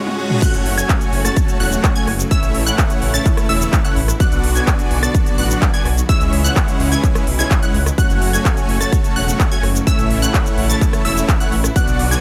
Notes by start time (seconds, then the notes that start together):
Already playing: G#3 C#4 F#4 C#5 F#5, reverse cymbal, riser
0.07 high tom
0.18 G#3 C#4 F#4 C#5 F#5
0.30 mid tom
0.42 C#3 F#3 A3 C#4 F#4 F#5 F#6, kick, closed hi-hat, crash, cabasa
0.54 F#1, closed hi-hat, cabasa
0.66 F#1, open hi-hat
0.77 A3 C#4 F#4 C#5 G#5 G#6, closed hi-hat, cabasa
0.89 kick, clap, closed hi-hat, cabasa
1.01 closed hi-hat, cabasa
1.13 F#1, open hi-hat
1.25 A3 C#4 F#4 C#5 A5 A6, cross-stick, closed hi-hat, cabasa
1.36 kick, closed hi-hat, cabasa
1.48 closed hi-hat, cabasa
1.60 E1 A3 C#4 F#4 C#5 F#5 F#6, open hi-hat
1.72 closed hi-hat, cabasa
1.84 kick, clap, closed hi-hat, cabasa
1.96 A3 C#4 F#4 C#5 G#5 G#6, closed hi-hat, cabasa
2.07 F#1, cross-stick, open hi-hat
2.19 closed hi-hat, cabasa
2.31 E3 A3 C#4 E4 C#5 E5 E6, kick, closed hi-hat, cabasa
2.43 A1, closed hi-hat, cabasa
2.55 A1, open hi-hat
2.66 A3 C#4 E4 C#5 F#5 F#6, closed hi-hat, cabasa
2.78 kick, clap, closed hi-hat, cabasa
2.90 closed hi-hat, cabasa
3.02 A1, open hi-hat
3.14 A3 C#4 E4 C#5 A5 A6, closed hi-hat, cabasa
3.25 kick, clap, closed hi-hat, cabasa
3.37 cross-stick, closed hi-hat, cabasa
3.49 E1 A3 C#4 E4 C#5 E5 E6, open hi-hat
3.61 closed hi-hat, cabasa
3.73 kick, clap, closed hi-hat, cabasa
3.85 A3 C#4 E4 C#5 F#5 F#6, closed hi-hat, cabasa
3.96 A1, open hi-hat
4.08 cross-stick, closed hi-hat, cabasa
4.20 D3 F#3 B3 D4 F#4 D5 F#5 F#6, kick, closed hi-hat, cabasa
4.32 B1, closed hi-hat, cabasa
4.44 B1, open hi-hat
4.55 B3 D4 F#4 D5 G#5 G#6, closed hi-hat, cabasa
4.67 kick, clap, closed hi-hat, cabasa
4.79 closed hi-hat, cabasa
4.91 B1, open hi-hat
5.03 B3 D4 F#4 D5 A5 A6, cross-stick, closed hi-hat, cabasa
5.14 kick, closed hi-hat, cabasa
5.26 closed hi-hat, cabasa
5.38 A1 B3 D4 F#4 D5 F#5 F#6, open hi-hat
5.50 closed hi-hat, cabasa
5.62 kick, clap, closed hi-hat, cabasa
5.74 B3 D4 F#4 D5 G#5 G#6, closed hi-hat, cabasa
5.85 B1, cross-stick, open hi-hat
5.97 closed hi-hat, cabasa
6.09 C#3 E3 G#3 C#4 E4 C#5 E5 E6, kick, closed hi-hat, cabasa
6.21 C#2, closed hi-hat, cabasa
6.33 C#2, open hi-hat
6.44 G#3 C#4 E4 C#5 F#5 F#6, closed hi-hat, cabasa
6.56 kick, clap, closed hi-hat, cabasa
6.68 closed hi-hat, cabasa
6.80 C#2, open hi-hat
6.92 G#3 C#4 E4 C#5 G#5 G#6, closed hi-hat, cabasa
7.04 kick, clap, closed hi-hat, cabasa
7.15 cross-stick, closed hi-hat, cabasa
7.27 B1, open hi-hat
7.39 G#3 C#4 E4 C#5 G#5 G#6, closed hi-hat, cabasa
7.51 kick, clap, closed hi-hat, cabasa
7.63 G#3 C#4 E4 C#5 F#5 F#6, closed hi-hat, cabasa
7.74 C#2, open hi-hat
7.86 cross-stick, closed hi-hat, cabasa
7.98 C#3 F#3 A3 C#4 F#4 C#5 F#5 F#6, kick, closed hi-hat, cabasa
8.10 F#1, closed hi-hat, cabasa
8.22 F#1, open hi-hat
8.33 A3 C#4 F#4 C#5 G#5 G#6, closed hi-hat, cabasa
8.45 kick, clap, closed hi-hat, cabasa
8.57 closed hi-hat, cabasa
8.69 F#1, open hi-hat
8.81 A3 C#4 F#4 C#5 A5 A6, cross-stick, closed hi-hat, cabasa
8.92 kick, closed hi-hat, cabasa
9.04 closed hi-hat, cabasa
9.16 E1 A3 C#4 F#4 C#5 F#5 F#6, open hi-hat
9.28 closed hi-hat, cabasa
9.40 kick, clap, closed hi-hat, cabasa
9.52 A3 C#4 F#4 C#5 G#5 G#6, closed hi-hat, cabasa
9.63 F#1, cross-stick, open hi-hat
9.75 closed hi-hat, cabasa
9.87 E3 A3 C#4 E4 C#5 E5 E6, kick, closed hi-hat, cabasa
9.99 A1, closed hi-hat, cabasa
10.10 A1, open hi-hat
10.22 A3 C#4 E4 C#5 F#5 F#6, closed hi-hat, cabasa
10.34 kick, clap, closed hi-hat, cabasa
10.46 closed hi-hat, cabasa
10.58 A1, open hi-hat
10.70 A3 C#4 E4 C#5 A5 A6, closed hi-hat, cabasa
10.81 kick, clap, closed hi-hat, cabasa
10.93 cross-stick, closed hi-hat, cabasa
11.05 E1 A3 C#4 E4 C#5 E5 E6, open hi-hat
11.17 closed hi-hat, cabasa
11.29 kick, clap, closed hi-hat, cabasa
11.40 A3 C#4 E4 C#5 F#5 F#6, closed hi-hat, cabasa
11.52 A1, open hi-hat
11.64 cross-stick, closed hi-hat, cabasa
11.76 D3 F#3 B3 D4 F#4 D5 F#5 F#6, kick, closed hi-hat, cabasa
11.88 B1, closed hi-hat, cabasa
11.99 B1, open hi-hat
12.11 B3 D4 F#4 D5 G#5 G#6, closed hi-hat, cabasa